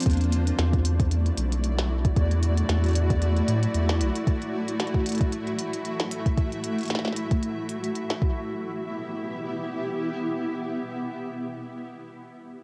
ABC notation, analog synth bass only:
X:1
M:4/4
L:1/8
Q:"Swing 16ths" 1/4=114
K:Em
V:1 name="Analog synth bass" clef=bass
E,,2 E,,3 B,,,3 | E,,2 E,,3 A,, E,, B,,, | z8 | z8 |
z8 | z8 |]